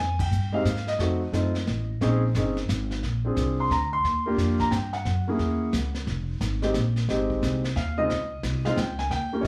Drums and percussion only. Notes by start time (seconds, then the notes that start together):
0.19 kick, ride
0.32 hi-hat pedal
0.65 snare, hi-hat pedal
0.76 snare
0.87 snare
0.99 brush sweep, snare
1.33 snare, hi-hat pedal
1.55 snare
1.67 snare
2.01 brush sweep, snare
2.35 snare, hi-hat pedal
2.57 snare
2.69 snare, hi-hat pedal
2.91 snare
3.03 brush sweep, snare
3.37 snare, hi-hat pedal
3.71 snare
4.05 brush sweep, snare
4.38 snare, hi-hat pedal
4.59 kick, snare
4.72 snare, hi-hat pedal
4.93 snare
5.05 brush sweep, snare
5.39 snare
5.73 snare, hi-hat pedal
5.95 snare
6.07 brush sweep, snare
6.41 snare, hi-hat pedal
6.62 snare
6.74 snare, hi-hat pedal
6.96 snare
7.09 brush sweep, snare
7.30 kick
7.43 snare, hi-hat pedal
7.64 snare
7.76 snare
8.10 brush sweep, snare
8.43 snare, hi-hat pedal
8.65 snare
8.77 snare, hi-hat pedal
8.99 snare
9.11 brush sweep, snare